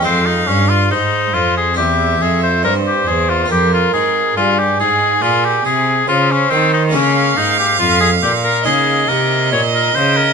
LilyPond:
<<
  \new Staff \with { instrumentName = "Violin" } { \time 4/4 \key f \minor \tempo 4 = 70 f''4 c''4 e''4 c''4 | bes'4 aes'2 c''4 | \key bes \dorian f''2 ees''2 | }
  \new Staff \with { instrumentName = "Oboe" } { \time 4/4 \key f \minor c'16 ees'16 des'16 f'16 ees'8 f'16 aes'16 g'8 aes'16 c''16 bes'16 g'16 aes'16 f'16 | g'16 f'16 aes'8 f'16 g'16 aes'8 f'16 g'16 aes'8 f'16 des'16 c'16 ees'16 | \key bes \dorian des'8 ees'16 g'16 f'16 aes'16 g'16 bes'16 aes'8 bes'8 des''16 bes'16 c''16 bes'16 | }
  \new Staff \with { instrumentName = "Harpsichord" } { \time 4/4 \key f \minor <aes c'>8 r4. c'2 | c'4 r2. | \key bes \dorian <aes bes des'>2 <bes ees'>2 | }
  \new Staff \with { instrumentName = "Harpsichord" } { \clef bass \time 4/4 \key f \minor f,8 g,8 aes,8 f,8 e,8 f,8 g,8 e,8 | f,8 aes,8 g,8 aes,8 bes,8 c8 des8 ees8 | \key bes \dorian des8 aes,8 f,8 bes,8 des8 c8 bes,8 des8 | }
  \new Staff \with { instrumentName = "Cello" } { \clef bass \time 4/4 \key f \minor f,8 g,8 aes,8 f,8 e,8 f,8 g,8 e,8 | f,8 aes,8 g,8 aes,8 bes,8 c8 des8 ees8 | \key bes \dorian des8 aes,8 f,8 bes,8 des8 c8 bes,8 des8 | }
>>